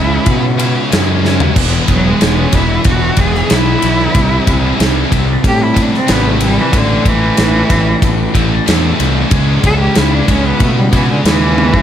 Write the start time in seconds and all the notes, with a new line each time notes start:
Already playing: C#2 C#3 G#3 C#4 E4
0.11 muted distorted electric guitar stroke
0.26 B2 C#3 G#3 C#4, kick, ride
0.58 C#3 G#3 C#4 E4, ride
0.75 muted distorted electric guitar stroke
0.89 F#2 C#3 G#3 C#4 E4, ride
0.93 snare
1.22 C#3 G#3 C#4 E4, snare
1.38 C#4 E4, floor tom
1.42 G#3
1.54 E1 E2 B2 E3 G#3 B3 E4, kick, crash
1.58 E3
1.88 E1 F#3, kick, ride
2.04 G#3 B3 E4
2.09 G#3
2.20 E1 E3 G#3 B3 E4, snare, ride
2.35 G#3 B3 C#4 E4
2.52 E1 E3 G#3 B3 E4, kick, ride
2.70 muted distorted electric guitar stroke
2.84 E1 E2 B2 E3 F#4, kick, ride
3.17 E1 E3 G#3 B3 E4 G#4, kick, ride
3.34 muted distorted electric guitar stroke, snare
3.48 B1 E3 G#3 B3 E4, snare, ride
3.82 B1 E3 G#3 B3 E4, ride
3.97 G#3 B3 E4
4.13 C2 C3 E3 G3 C4 E4, kick, ride
4.47 C2, kick, ride
4.62 G3 C4 E4
4.77 C2 C3 E3 G3 C4 E4, snare, ride
4.93 G3 C4 E4
5.09 C2 E3 G3 C4 E4, kick, ride
5.27 muted distorted electric guitar stroke
5.43 A2 C3 G3 C4 G4, kick, ride
5.63 E4
5.74 E3 G3 C4 E4, kick, ride
5.81 D4
5.92 C4, muted distorted electric guitar stroke, snare
6.07 G#1 C3 E3 G3 B3 C4 E4, snare, ride
6.27 A3
6.40 E3 G3 C4 E4, ride
6.56 E3 G3 C4 E4
6.72 A1 A2 E3 A3 C4 E4, kick, ride
6.77 D3
7.05 A1 E3, kick, ride
7.21 A3 C4 E4
7.37 A1 A2 E3 A3 C4 E4, snare, ride
7.53 A3 C4 E4
7.69 A1 E3 A3 C4 E4, kick, ride
7.86 muted distorted electric guitar stroke
8.02 A1 A2 E3 A3, kick, ride
8.34 A1 E3 A3 C4 E4, kick, ride
8.51 muted distorted electric guitar stroke
8.66 E2 A2 E3 A3 C4 E4, snare, ride
8.99 C2 E3 A3 C4 E4, ride
9.14 A3 C4 E4
9.30 C#2 C#3 G#3 C#4, kick, ride
9.34 E4
9.63 C#2 A4, kick, ride
9.79 G#3 C#4 E4 G4
9.95 C#2 C#3 G#3 C#4 E4, snare, ride
10.12 G#3 C#4 D4 E4
10.28 C#2 C#3 G#3 C#4 E4, kick, ride
10.45 B3, muted distorted electric guitar stroke
10.60 B2 C#3 G#3 A3 C#4, kick, ride
10.79 G3
10.92 C#3 E3 G#3 C#4 E4, kick, ride
11.10 D3, muted distorted electric guitar stroke
11.25 D#2 C#3 E3 G#3 C#4 E4, snare, ride
11.57 C#3 G#3 C#4 E4, high tom
11.73 G#3 C#4 E4, kick